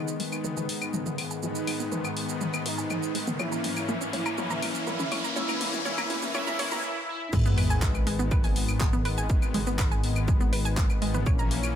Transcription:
Already playing: synth drone G#2, analog synth pad D#3 G#3 B3, analog polysynth D#4, riser
0.08 shaker
0.20 analog synth pad D#3 G#3 B3, synth arpeggio sound G#3, open hi-hat
0.32 synth arpeggio sound B3, claves, shaker
0.44 synth arpeggio sound B4, mid tom, shaker
0.57 synth arpeggio sound G#5, mid tom, shaker
0.69 analog synth pad D#3 G#3 B3, open hi-hat
0.82 claves, shaker
0.94 synth arpeggio sound G#3, mid tom, shaker
1.06 synth arpeggio sound B3, mid tom, shaker
1.18 synth arpeggio sound B4, open hi-hat, claves
1.31 synth arpeggio sound G#5, shaker
1.43 analog synth pad D#3 G#3 B3, analog polysynth D#4, mid tom, shaker
1.55 shaker
1.67 synth arpeggio sound G#3, open hi-hat, claves
1.80 synth arpeggio sound B3, shaker
1.92 synth arpeggio sound B4, mid tom, shaker
2.05 synth arpeggio sound G#5, claves, shaker
2.17 analog synth pad D#3 G#3 B3, open hi-hat
2.29 shaker
2.41 synth arpeggio sound G#3, mid tom, shaker
2.54 synth arpeggio sound B3, claves, shaker
2.66 analog synth pad D#3 G#3 B3, analog polysynth D#4, synth arpeggio sound B4, open hi-hat
2.78 synth arpeggio sound G#5, shaker
2.90 mid tom, claves, shaker
3.03 shaker
3.15 synth arpeggio sound G#3, open hi-hat
3.27 synth arpeggio sound B3, mid tom, shaker
3.39 analog synth pad E3 A#3 C#4, analog polysynth E4, synth arpeggio sound C#5, mid tom, claves, shaker
3.52 synth arpeggio sound A#5, shaker
3.64 open hi-hat, mid tom
3.77 claves, shaker
3.89 synth arpeggio sound A#3, analog polysynth E4, mid tom, shaker
4.01 synth arpeggio sound C#4, shaker
4.13 analog synth pad E3 A#3 C#4, synth arpeggio sound C#5, open hi-hat, mid tom
4.26 synth arpeggio sound A#5, claves, shaker
4.38 analog synth pad E3 A#3 C#4, analog polysynth E4, synth arpeggio sound C#5, mid tom, shaker
4.50 synth arpeggio sound A#5, mid tom, shaker
4.62 open hi-hat, mid tom, claves
4.75 shaker
4.87 synth arpeggio sound A#3, analog polysynth E4, mid tom, shaker
5.00 synth arpeggio sound C#4, mid tom, shaker
5.12 analog synth pad E3 A#3 C#4, synth arpeggio sound C#5, open hi-hat, mid tom, claves
5.24 synth arpeggio sound A#5, shaker
5.36 analog synth pad E3 A#3 C#4, analog polysynth E4, synth arpeggio sound C#5, mid tom, shaker
5.49 synth arpeggio sound A#5, mid tom, claves, shaker
5.61 open hi-hat, mid tom
5.73 mid tom, shaker
5.85 analog synth pad E3 A#3 C#4, analog polysynth E4, synth arpeggio sound C#5, mid tom, shaker
5.98 synth arpeggio sound A#5, mid tom, claves, shaker
6.10 open hi-hat, mid tom
6.23 mid tom, shaker
6.35 analog synth pad E3 A#3 C#4, analog polysynth E4, synth arpeggio sound C#5, mid tom, claves, shaker
6.47 synth arpeggio sound A#5, mid tom, shaker
6.59 analog synth pad E3 A#3 C#4, analog polysynth E4, synth arpeggio sound C#5, open hi-hat, mid tom
6.72 synth arpeggio sound A#5, mid tom, shaker
6.84 analog polysynth E4
7.08 analog polysynth E4
7.33 detuned saw bass G#1, analog synth pad D#3 G#3 B3, synth arpeggio sound G#3, kick, crash, sub drop, shaker
7.46 synth arpeggio sound B3, shaker
7.58 synth arpeggio sound B4, open hi-hat, claves
7.70 synth arpeggio sound G#5, shaker
7.82 kick, clap, shaker
7.95 claves, shaker
8.07 analog synth pad D#3 G#3 B3, synth arpeggio sound G#3, open hi-hat
8.19 synth arpeggio sound B3, shaker
8.31 synth arpeggio sound B4, kick, claves, shaker
8.44 synth arpeggio sound G#5, open hi-hat, mid tom, shaker
8.56 analog synth pad D#3 G#3 B3, open hi-hat
8.69 claves, shaker
8.81 synth arpeggio sound G#3, kick, clap, shaker
8.93 synth arpeggio sound B3, mid tom, shaker
9.05 analog synth pad D#3 G#3 B3, synth arpeggio sound B4, open hi-hat, claves
9.18 synth arpeggio sound G#5, shaker
9.30 analog synth pad D#3 G#3 B3, kick, shaker
9.42 claves, shaker
9.54 synth arpeggio sound G#3, open hi-hat, mid tom
9.67 synth arpeggio sound B3, shaker
9.79 synth arpeggio sound B4, kick, clap, claves, shaker
9.91 synth arpeggio sound G#5, shaker
10.03 analog synth pad D#3 G#3 B3, open hi-hat
10.16 claves, shaker
10.28 synth arpeggio sound G#3, kick, shaker
10.41 synth arpeggio sound B3, shaker
10.53 analog synth pad D#3 G#3 B3, synth arpeggio sound B4, open hi-hat, claves
10.65 synth arpeggio sound G#5, shaker
10.77 kick, clap, shaker
10.90 claves, shaker
11.02 analog synth pad D#3 G#3 B3, synth arpeggio sound G#3, open hi-hat
11.14 synth arpeggio sound B3, mid tom, shaker
11.26 detuned saw bass A#1, analog synth pad E3 A#3 C#4, synth arpeggio sound C#5, kick, claves, shaker
11.39 synth arpeggio sound A#5, shaker
11.51 open hi-hat
11.64 claves, shaker

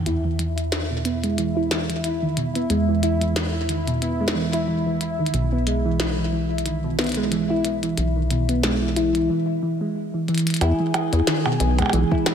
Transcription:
0.06 acid bass E2, synth texture E4 E5, synth pluck E4, closed hi-hat
0.25 synth pluck E3
0.39 synth pluck E3, closed hi-hat
0.58 closed hi-hat
0.72 synth pluck D#3, snare, closed hi-hat
0.91 synth pluck B2
1.05 synth pluck B3, closed hi-hat
1.24 synth pluck G#3, closed hi-hat
1.38 synth pluck E3, closed hi-hat
1.57 synth pluck E4
1.71 synth pluck E3, snare, closed hi-hat
1.90 synth pluck E3, closed hi-hat
2.04 closed hi-hat
2.23 synth pluck D#3
2.37 synth pluck B2, closed hi-hat
2.55 synth pluck B3, closed hi-hat
2.70 acid bass E2, synth pluck G#3, closed hi-hat
2.89 synth pluck E3
3.03 synth pluck E4, closed hi-hat
3.21 synth pluck E3, closed hi-hat
3.36 synth pluck E3, snare, closed hi-hat
3.69 synth pluck D#3, closed hi-hat
3.87 synth pluck B2, closed hi-hat
4.02 synth pluck B3, closed hi-hat
4.20 synth pluck G#3
4.28 snare
4.35 synth pluck E3
4.53 synth pluck E4, closed hi-hat
4.68 synth pluck E3
4.86 synth pluck E3
5.01 closed hi-hat
5.19 synth pluck D#3
5.26 closed hi-hat
5.34 acid bass B1, synth pluck B2, closed hi-hat
5.52 synth pluck B3
5.67 synth pluck G#3, closed hi-hat
5.85 synth pluck E3
6.00 synth pluck E4, snare, closed hi-hat
6.18 synth pluck E3
6.33 synth pluck E3
6.58 closed hi-hat
6.66 synth pluck D#3, closed hi-hat
6.84 synth pluck B2
6.99 synth pluck B3, snare, closed hi-hat
7.01 closed hi-hat
7.04 closed hi-hat
7.07 closed hi-hat
7.09 closed hi-hat
7.12 closed hi-hat
7.15 synth pluck G#3, closed hi-hat
7.32 synth pluck E3, closed hi-hat
7.50 synth pluck E4
7.65 synth pluck E3, closed hi-hat
7.83 synth pluck E3, closed hi-hat
7.98 acid bass B1, closed hi-hat
8.16 synth pluck D#3
8.31 synth pluck B2, closed hi-hat
8.49 synth pluck B3, closed hi-hat
8.63 synth pluck G#3, snare, closed hi-hat
8.82 synth pluck E3
8.96 synth pluck E4, closed hi-hat
9.15 synth pluck E3, closed hi-hat
9.29 synth pluck E3
9.63 synth pluck E3
9.81 synth pluck G#3
10.14 synth pluck E3
10.28 synth pluck E3, closed hi-hat
10.35 closed hi-hat
10.38 closed hi-hat
10.39 closed hi-hat
10.47 closed hi-hat
10.50 closed hi-hat
10.54 closed hi-hat
10.56 closed hi-hat
10.61 acid bass E2, synth pluck E4, synth texture G#4 G#5, closed hi-hat, percussion blips
10.80 synth pluck E3
10.94 synth pluck E3, closed hi-hat, percussion blips
11.13 acid bass E2, closed hi-hat
11.27 synth pluck D#3, snare, closed hi-hat
11.46 synth pluck B2, percussion blips
11.60 acid bass B1, synth pluck B3, closed hi-hat
11.79 synth pluck G#3, kick, closed hi-hat, percussion blips
11.82 percussion blips
11.86 percussion blips
11.90 acid bass B1, synth pluck E3, closed hi-hat, percussion blips
12.12 synth pluck E4, kick
12.26 synth pluck E3, snare, closed hi-hat, percussion blips

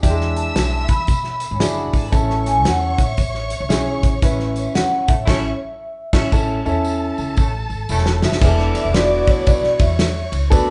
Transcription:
0.03 upright bass E2, upright piano D4 E4 G4, string section E5 E6, kick, closed hi-hat, tambourine
0.09 upright piano G#3
0.21 snare
0.36 vibraphone A5, closed hi-hat, tambourine
0.56 upright bass B1, snare, closed hi-hat, tambourine
0.88 upright bass E3, vibraphone B5, kick, closed hi-hat, tambourine
1.07 upright bass B2, kick, closed hi-hat, tambourine
1.24 snare
1.40 closed hi-hat, tambourine
1.51 upright bass G#2, string section C#4 C#5
1.60 upright bass F#1, upright piano D4 E4 G#4, string section D4 D5, snare, closed hi-hat, tambourine
1.73 string section E4 E5
1.77 string section F#4 F#5
1.93 upright bass G#1, string section G#4 A4 G#5 A5, kick, open hi-hat, tambourine
2.06 string section B4 B5
2.12 upright bass A1, upright piano C#4 E4 A4, string section C#5 C#6, vibraphone A5, kick, closed hi-hat, tambourine
2.30 snare
2.46 vibraphone G#5, snare, closed hi-hat, tambourine
2.65 upright bass E2, vibraphone F#5, snare, closed hi-hat, tambourine
2.98 upright bass A2, vibraphone E5, kick, closed hi-hat, tambourine
3.17 upright bass A1, vibraphone E5, kick, closed hi-hat, tambourine
3.34 snare
3.50 closed hi-hat, tambourine
3.60 upright bass C#2
3.69 upright bass B1, upright piano C#4 E4 G#4, snare, closed hi-hat, tambourine
4.03 upright bass A1, kick, closed hi-hat, tambourine
4.22 upright bass A1, upright piano C#4 E4 B4, vibraphone E5, kick, closed hi-hat, tambourine
4.40 snare
4.56 closed hi-hat, tambourine
4.75 upright bass E2, vibraphone F#5, snare, closed hi-hat, tambourine
5.08 upright bass A2, horn section A3 C#4 E4 A4, vibraphone E5, kick, closed hi-hat, tambourine
5.26 upright bass A1, horn section A3 C#4 E4 A4, upright piano C#4 E4, string section C#5 C#6, kick, snare, crash
6.13 upright bass A1, horn section A3 C#4 E4 A4, upright piano C#4 E4, string section C#5 C#6, kick, snare, crash
6.32 upright bass A1, upright piano C#4 E4 A4, string section A4 A5, kick, tambourine
6.65 upright bass E2, upright piano C#4 E4 A4, tambourine
6.85 tambourine
7.18 upright bass C#2, tambourine
7.37 upright bass A1, horn section A3 C#4 E4 A4, kick, tambourine
7.70 upright bass G#1, tambourine
7.89 upright bass E1, horn section A3 C#4 E4 A4, tambourine
8.06 snare
8.22 upright bass F#1, vibraphone E5, snare, tambourine
8.32 snare
8.41 upright bass E1, horn section E3 A3 B3 E4, upright piano B3 D4 E4 G#4, string section D5 D6, kick, crash, tambourine
8.48 upright piano A4
8.59 snare
8.74 vibraphone E5, snare, ride, tambourine
8.85 upright bass E1
8.94 upright piano B3 D4 E4 F4, vibraphone D5, snare, ride, tambourine
9.00 upright piano F#4
9.27 upright bass D2, vibraphone C#5, kick, ride, tambourine
9.45 upright bass B1, string section C#5 C#6, vibraphone D5, kick, ride, tambourine
9.64 snare
9.79 upright bass E2, vibraphone E5, kick, ride, tambourine
9.99 snare, ride, tambourine
10.32 upright bass C#2, ride, tambourine
10.50 upright bass D2, horn section F#3 B3 D4 F#4, upright piano B3 D4 F#4 A4, string section B4 B5, kick, ride, tambourine

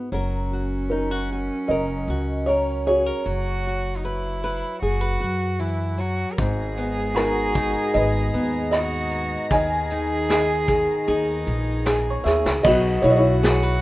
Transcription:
Already playing: nylon-string guitar G#2 B3
0.12 upright bass F#1, nylon-string guitar F#3 C#4 F#4 A#4, cello C#4
0.53 nylon-string guitar F#4
0.90 nylon-string guitar D#4, felt piano A#4
1.11 nylon-string guitar F#4
1.32 nylon-string guitar F#4
1.68 upright bass F#1, felt piano A#4 D#5, nylon-string guitar A#4
2.08 upright bass C#2, nylon-string guitar F#4
2.46 nylon-string guitar A#4, felt piano C#5
2.87 felt piano F#4 C#5, nylon-string guitar G#4
3.06 nylon-string guitar A#4
3.25 upright bass F#1, nylon-string guitar F#3, cello F#4
3.67 nylon-string guitar F#4
3.97 cello D#4
4.04 cello E4, nylon-string guitar B4
4.44 nylon-string guitar B4
4.82 upright bass F#1, cello F#4, nylon-string guitar G#4
5.01 nylon-string guitar B4
5.20 upright bass F#2, nylon-string guitar F#4
5.59 nylon-string guitar E3, cello E4
5.98 nylon-string guitar F#3, cello F#4
6.32 cello A#4
6.38 upright bass G#1, nylon-string guitar G#2, string section G#3 B3 G#4 A#5, cello G#4, kick, closed hi-hat
6.77 nylon-string guitar B3, closed hi-hat
7.15 nylon-string guitar D#4, clean electric guitar F#4, felt piano A#4, cross-stick, closed hi-hat
7.55 nylon-string guitar D#4, kick, closed hi-hat
7.94 upright bass G#1, felt piano B4 D#5, closed hi-hat
8.34 upright bass D#2, nylon-string guitar B3, closed hi-hat
8.71 cello F#4, felt piano D#5, cross-stick, closed hi-hat
9.11 closed hi-hat
9.51 upright bass D#2, string section D#3 G#4, nylon-string guitar D#3, cello G#4, felt piano D#5 G#5, kick, closed hi-hat
9.90 nylon-string guitar D#4, closed hi-hat
10.29 nylon-string guitar G#4, snare, closed hi-hat
10.68 nylon-string guitar G#4, kick, closed hi-hat
11.08 upright bass D#2, cello D#4, nylon-string guitar G#4, closed hi-hat
11.47 upright bass A#1, closed hi-hat
11.85 nylon-string guitar G#4, snare, closed hi-hat
12.10 clean electric guitar C#5
12.24 upright bass D#2, nylon-string guitar G#4, felt piano G#4 E5, snare
12.45 upright bass C#2, snare
12.63 upright bass B1, nylon-string guitar B2 B4, string section F#3 B3, cello F#4, felt piano F#4 D#5, kick, crash
13.02 upright bass B1, felt piano E4 C#5, nylon-string guitar F#4, closed hi-hat
13.10 felt piano D#5
13.16 felt piano E4 C#5
13.43 nylon-string guitar G#4, snare, closed hi-hat
13.63 nylon-string guitar B4

